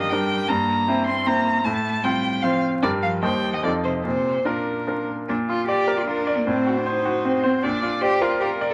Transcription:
Already playing: grand piano G2 D4 G4 A#4
0.01 cello D#3, violin D#5
0.10 cello G3, grand piano D4 G4 A#4, violin G5
0.48 grand piano G2, cello A#3, violin A#5
0.88 grand piano C4 E4 C5
1.06 cello C4, violin C6
1.26 cello A#3, grand piano C4 E4 C5, violin A#5
1.65 grand piano A2, cello A3, violin A5
2.03 cello G3, grand piano C4 F4 C5, violin G5
2.42 cello F3, grand piano C4 F4 C5, violin F5
2.82 grand piano G2 D4 G4 A#4, cello D3, violin D5
3.02 cello F3, violin F5
3.23 grand piano D#2 D#4 G4 C5, cello G3, violin G5
3.52 cello D#3, violin D#5
3.62 grand piano F2 D#4 F4 A4, cello D3, violin D5
3.83 cello C3, violin C5
4.04 grand piano A#2, cello C3, violin C5
4.45 cello A#2, grand piano D4 F4 A#4, violin A#4
4.87 grand piano D4 F4 A#4
5.29 grand piano A#2, cello D4
5.48 cello F4, grand piano F4
5.68 cello G4, grand piano D5, violin D5
5.88 grand piano A#4
5.97 cello F4
6.06 cello D4, grand piano F4, violin A#4
6.27 grand piano D5
6.37 cello A#3
6.47 grand piano A2, cello C4, violin C5
6.67 grand piano F#4
6.77 cello D4
6.86 cello D#4, grand piano C5
7.05 grand piano F#4
7.25 grand piano C4, violin C5
7.44 cello C4, grand piano C5
7.62 grand piano A#2, cello D4, violin D5
7.82 cello D4, grand piano F4
8.01 cello G4, violin C5, grand piano D5
8.21 cello F4, grand piano A#4
8.40 grand piano F4, cello G4, violin A#4
8.61 grand piano D5
8.70 cello A4

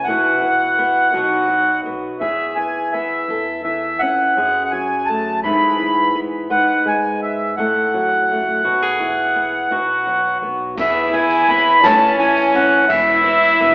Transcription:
0.04 upright bass B1, steel-string acoustic guitar B2, accordion F#5
0.08 steel-string acoustic guitar E3 B3 E4 F#4
0.42 steel-string acoustic guitar E3
0.79 steel-string acoustic guitar B3
1.14 upright bass B1, steel-string acoustic guitar B2 F#3 B3 D#4 F#4
1.49 steel-string acoustic guitar F#3
1.86 upright bass B1, steel-string acoustic guitar B3
2.20 steel-string acoustic guitar E2 G#4, upright bass E2, accordion E5
2.56 steel-string acoustic guitar E3, accordion G#5
2.92 steel-string acoustic guitar B3, accordion E5
3.29 upright bass E2, steel-string acoustic guitar A4
3.64 steel-string acoustic guitar E3, accordion E5
3.99 upright bass F2, steel-string acoustic guitar C#4, accordion F#5
4.37 upright bass F#2, steel-string acoustic guitar F#2 G#4
4.65 accordion F#5
4.71 steel-string acoustic guitar F#3, accordion G#5
5.06 steel-string acoustic guitar A3, accordion A5
5.44 upright bass G#2, steel-string acoustic guitar G#2 E3 B3 E4 G#4, accordion B5
5.80 steel-string acoustic guitar E3
6.15 upright bass G#2, steel-string acoustic guitar B3
6.50 steel-string acoustic guitar G#2 B4, upright bass G#2, accordion F#5
6.86 steel-string acoustic guitar G#3, accordion G#5
7.22 accordion E5
7.57 upright bass A2, steel-string acoustic guitar A2 A4, accordion F#5
7.94 steel-string acoustic guitar F#3
8.29 upright bass C#2, steel-string acoustic guitar A3
8.64 upright bass B1, steel-string acoustic guitar B2 F#4
8.82 steel-string acoustic guitar G#4
9.00 steel-string acoustic guitar E3
9.36 steel-string acoustic guitar B3
9.71 upright bass B1, steel-string acoustic guitar B2 F#4
10.07 steel-string acoustic guitar F#3
10.42 upright bass B1, steel-string acoustic guitar B3
10.77 upright bass E2, steel-string acoustic guitar E2 E3 B3 E4, french horn E4, accordion E5, kick, ride, tambourine
10.81 steel-string acoustic guitar G#4
10.96 tambourine
11.13 steel-string acoustic guitar E3, accordion G#5, ride
11.30 tambourine
11.48 upright bass E2, steel-string acoustic guitar B3, accordion B5, ride
11.82 upright bass A1, steel-string acoustic guitar A2, french horn C#4, accordion A5, snare, ride, tambourine
12.02 tambourine
12.19 steel-string acoustic guitar E3, accordion G#5, ride
12.37 tambourine
12.47 accordion G#5
12.55 upright bass A1, steel-string acoustic guitar C#4, accordion F#5, ride
12.89 upright bass E1, steel-string acoustic guitar E2, french horn E4, accordion E5, kick, ride, tambourine
13.08 tambourine
13.24 steel-string acoustic guitar E3, ride
13.43 tambourine
13.61 upright bass E1, steel-string acoustic guitar B3, ride

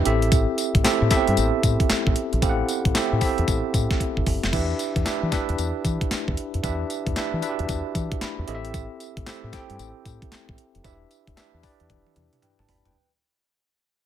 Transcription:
0.05 fingered electric bass A1, tine electric piano C4 E4 G4 A4 E5, closed hi-hat
0.22 closed hi-hat
0.32 kick, closed hi-hat, tambourine
0.58 closed hi-hat, tambourine
0.75 fingered electric bass A1, kick, closed hi-hat
0.84 tine electric piano C4 E4 G4 A4 E5, muted fingered electric bass stroke, snare, clap, closed hi-hat, tambourine
1.02 fingered electric bass A2
1.10 tine electric piano B3 E4 G4 A4 E5, kick, snare, closed hi-hat, tambourine
1.17 tine electric piano C4
1.27 fingered electric bass G2, closed hi-hat
1.37 fingered electric bass A1, closed hi-hat, tambourine
1.63 fingered electric bass A2, kick, closed hi-hat, tambourine
1.80 kick, closed hi-hat
1.90 muted fingered electric bass stroke, snare, clap, closed hi-hat, tambourine
2.07 fingered electric bass A1, kick
2.16 closed hi-hat
2.33 fingered electric bass A#1, closed hi-hat
2.42 fingered electric bass A1, tine electric piano C4 E4 G4 A4 F5, kick, closed hi-hat, tambourine
2.49 tine electric piano F#5
2.69 closed hi-hat, tambourine
2.85 fingered electric bass A1, kick, closed hi-hat
2.95 tine electric piano C4 E4 G4 A4 E5, snare, clap, closed hi-hat, tambourine
3.13 fingered electric bass A2
3.21 tine electric piano C4 E4 G4 A4 E5, kick, open hi-hat, tambourine
3.38 fingered electric bass E2, closed hi-hat
3.48 fingered electric bass A1, kick, closed hi-hat, tambourine
3.74 fingered electric bass A2, kick, closed hi-hat, tambourine
3.91 kick, snare, closed hi-hat
4.00 kick, closed hi-hat
4.17 fingered electric bass G1, kick
4.26 fingered electric bass F#1, kick, open hi-hat
4.43 fingered electric bass F1, snare, closed hi-hat
4.52 fingered electric bass E2, tine electric piano D4 E4 G4 B4 E5, kick, crash, tambourine
4.79 closed hi-hat, tambourine
4.96 fingered electric bass E2, kick, closed hi-hat
5.05 tine electric piano D4 E4 G4 B4 E5, snare, clap, closed hi-hat, tambourine
5.23 fingered electric bass E3
5.32 tine electric piano D4 E4 G4 B4 E5, kick, snare, closed hi-hat, tambourine
5.49 fingered electric bass E2, closed hi-hat
5.58 fingered electric bass E2, closed hi-hat, tambourine
5.85 fingered electric bass E3, kick, closed hi-hat, tambourine
6.01 kick, closed hi-hat
6.11 muted fingered electric bass stroke, snare, clap, closed hi-hat, tambourine
6.28 fingered electric bass E2, kick
6.37 closed hi-hat
6.54 fingered electric bass F2, closed hi-hat
6.63 fingered electric bass E2, tine electric piano D4 E4 G4 B4 E5, kick, closed hi-hat, tambourine
6.90 closed hi-hat, tambourine
7.07 fingered electric bass E2, kick, closed hi-hat
7.16 tine electric piano D4 E4 G4 B4 E5, muted fingered electric bass stroke, snare, clap, closed hi-hat, tambourine
7.33 fingered electric bass E3
7.42 tine electric piano D4 E4 F#4 B4 E5, closed hi-hat, tambourine
7.49 tine electric piano G4
7.59 fingered electric bass E2, closed hi-hat
7.69 fingered electric bass E2, kick, closed hi-hat, tambourine
7.95 fingered electric bass E3, kick, closed hi-hat, tambourine
8.12 kick, closed hi-hat
8.21 tine electric piano B5, muted fingered electric bass stroke, snare, clap, closed hi-hat, tambourine
8.39 fingered electric bass E2
8.47 fingered electric bass A1, tine electric piano C4 E4 G4 A4 D#5 E5, closed hi-hat
8.55 tine electric piano E5
8.65 closed hi-hat
8.74 kick, closed hi-hat, tambourine
9.00 closed hi-hat, tambourine
9.17 fingered electric bass A1, kick, closed hi-hat
9.26 tine electric piano C4 E4 G4 A4 E5, muted fingered electric bass stroke, snare, clap, closed hi-hat, tambourine
9.44 fingered electric bass A2
9.52 tine electric piano C4 E4 G4 A4 G5, kick, snare, closed hi-hat, tambourine
9.70 fingered electric bass G2, closed hi-hat
9.79 fingered electric bass A1, closed hi-hat, tambourine
10.05 fingered electric bass A2, kick, closed hi-hat, tambourine
10.22 kick, closed hi-hat
10.32 muted fingered electric bass stroke, snare, clap, closed hi-hat, tambourine
10.49 fingered electric bass A1, kick
10.58 closed hi-hat
10.75 fingered electric bass F1, closed hi-hat
10.84 fingered electric bass E1, tine electric piano D4 E4 G4 B4 E5, kick, closed hi-hat, tambourine
11.11 closed hi-hat, tambourine
11.27 fingered electric bass E1, kick, closed hi-hat
11.36 tine electric piano D4 E4 G4 B4 E5, muted fingered electric bass stroke, snare, clap, closed hi-hat, tambourine
11.54 fingered electric bass E2
11.63 tine electric piano D4 E4 G4 B4 D5, kick, open hi-hat, tambourine
11.80 fingered electric bass E2, closed hi-hat
11.90 fingered electric bass E1, kick, closed hi-hat, high tom
12.06 high tom
12.16 fingered electric bass E2, closed hi-hat, mid tom
12.33 closed hi-hat, mid tom
12.42 tine electric piano B4 G5, closed hi-hat, mid tom
12.59 fingered electric bass G1, tine electric piano A5, mid tom
12.69 tine electric piano D5 B5, floor tom, open hi-hat
12.85 fingered electric bass F1, tine electric piano B4 G5, closed hi-hat, floor tom

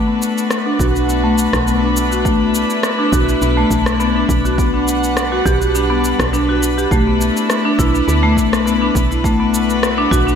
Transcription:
Already playing: string section A3 D4 F#4 B4
0.08 marimba B3
0.22 cabasa
0.38 cabasa
0.51 cross-stick, cabasa
0.66 marimba D4
0.79 fm bass B1, marimba F#4, kick, cabasa
0.95 marimba D4, cabasa
1.09 marimba B3, cabasa
1.24 marimba A3
1.38 cabasa
1.53 fm bass B1, kick, cross-stick, cabasa
1.67 marimba B3, cabasa
1.82 marimba D4
1.97 cabasa
2.11 marimba F#4, cabasa
2.25 marimba A3, string section E4, kick, cabasa
2.41 marimba B3
2.55 cabasa
2.70 cabasa
2.83 cross-stick, cabasa
2.99 marimba D4
3.12 fm bass B1, marimba F#4, kick, cabasa
3.28 marimba D4, cabasa
3.42 fm bass B1, marimba B3, cabasa
3.57 marimba A3
3.71 fm bass B1, kick, cabasa
3.86 cross-stick, cabasa
4.00 marimba B3, cabasa
4.16 marimba D4
4.29 fm bass B1, kick, cabasa
4.45 marimba F#4, cabasa
4.58 string section G3 B4 F#5, marimba B3, kick, cabasa
4.74 marimba D4
4.88 cabasa
5.04 cabasa
5.17 cross-stick, cabasa
5.32 marimba F#4
5.46 fm bass B1, marimba G4, kick, cabasa
5.61 marimba F#4, cabasa
5.75 marimba D4, cabasa
5.90 marimba B3
6.04 cabasa
6.19 fm bass B1, kick, cross-stick, cabasa
6.33 marimba D4, cabasa
6.49 marimba F#4
6.63 cabasa
6.78 marimba G4, cabasa
6.91 fm bass B1, marimba A3, string section A3 E4, kick, cabasa
7.07 marimba B3
7.21 cabasa
7.37 cabasa
7.50 cross-stick, cabasa
7.65 marimba D4
7.79 fm bass B1, marimba E4, kick, cabasa
7.94 marimba D4, cabasa
8.08 fm bass D2, marimba B3, cabasa
8.23 marimba A3
8.37 fm bass B1, kick, cabasa
8.53 cross-stick, cabasa
8.66 marimba B3, cabasa
8.82 marimba D4
8.95 fm bass B1, kick, cabasa
9.11 marimba E4, cabasa
9.24 marimba A3, string section D4 F#4, kick, cabasa
9.40 marimba B3
9.54 cabasa
9.70 cabasa
9.83 cross-stick, cabasa
9.98 marimba D4
10.11 fm bass B1, marimba F#4, kick, cabasa
10.27 marimba D4, cabasa

